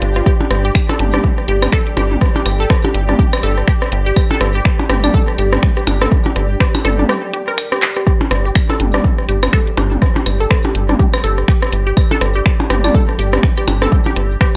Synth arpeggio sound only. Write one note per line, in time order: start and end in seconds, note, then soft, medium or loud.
0.16 0.20 F4 medium
0.26 0.30 G4 medium
0.65 0.67 G4 medium
0.89 0.93 A4 loud
1.14 1.16 G4 medium
1.48 1.50 G4 medium
1.73 1.78 A4 loud
1.97 2.01 G4 medium
2.36 2.38 G4 medium
2.60 2.64 A4 loud
2.84 2.87 G4 medium
3.19 3.21 G4 medium
3.43 3.49 A4 loud
3.68 3.71 G4 medium
4.06 4.08 G4 medium
4.31 4.35 A4 loud
4.55 4.58 G4 medium
4.90 4.92 G4 medium
5.14 5.20 A4 loud
5.38 5.42 G4 medium
5.77 5.79 G4 medium
6.01 6.05 A4 loud
6.26 6.28 G4 medium
6.60 6.63 G4 medium
6.85 6.90 A4 loud
7.09 7.13 G4 medium
7.33 7.37 G4 medium
7.48 7.50 A#4 loud
7.72 7.74 G4 medium
7.97 7.99 G4 medium
8.07 8.10 G4 medium
8.45 8.47 G4 medium
8.70 8.74 A4 loud
8.94 8.97 G4 medium
9.29 9.31 G4 medium
9.53 9.59 A4 loud
9.78 9.81 G4 medium
10.16 10.18 G4 medium
10.41 10.44 A4 loud
10.65 10.68 G4 medium
10.99 11.02 G4 medium
11.24 11.29 A4 loud
11.48 11.52 G4 medium
11.87 11.89 G4 medium
12.11 12.15 A4 loud
12.36 12.38 G4 medium
12.70 12.72 G4 medium
12.94 13.00 A4 loud
13.19 13.23 G4 medium
13.57 13.59 G4 medium
13.82 13.86 A4 loud
14.06 14.09 G4 medium
14.41 14.43 G4 medium